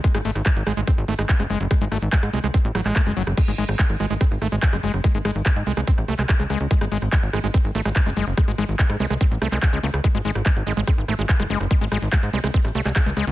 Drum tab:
CC |----------------|----------------|x---------------|----------------|
HH |xxoxx-oxxxo-x-ox|xxoxx-oxxxoxxxox|xxoxx-oxxxoxx-ox|xxoxx-oxxxoxx-ox|
CP |----x-------x---|----x------xx---|----x-------x---|----x------xx---|
SD |-r-r--r-r--r-r--|r-r--r-r--r-r--r|r--r-r--r-r--r-r|--r-r--r-r--r-r-|
BD |o---o---o---o---|o---o---o---o---|o---o---o---o---|o---o---o---o---|

CC |----------------|----------------|----------------|----------------|
HH |xxoxx-oxxxo-x-ox|xxoxx-o-xxoxx-ox|xxoxx-oxxxoxx-ox|xxoxx-oxxxoxx-ox|
CP |----x-------x---|----x------xx---|----x-------x---|----x------xx---|
SD |-r-r--r-r--r-r--|r-r--r-r--r-r--r|r--r-r--r-r--r-r|--r-r--r-r--r-r-|
BD |o---o---o---o---|o---o---o---o---|o---o---o---o---|o---o---o---o---|